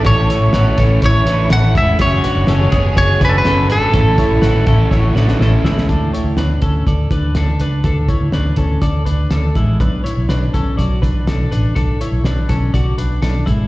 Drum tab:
HH |x-x-x-x-x-x-x-x-|x-x-x-x-x-x-x-x-|x-x-x-x---------|x-x-x-x-x-x-x-x-|
SD |----o-------o---|----o-------o---|----o---o-ooo-oo|----o-------o---|
BD |o-----o-o-----o-|o-----o-o-o-----|o-o---o-o-------|o-----o-o-o-----|

HH |x-x-x-x-x-x-x-x-|x-x-x-x-x-x-x-x-|x-x-x-x-x-x-x-x-|
SD |----o-------o---|----o-------o---|----o-------o---|
BD |o-o---o-o-----o-|o-----o-o-o-----|o-----o-o-----o-|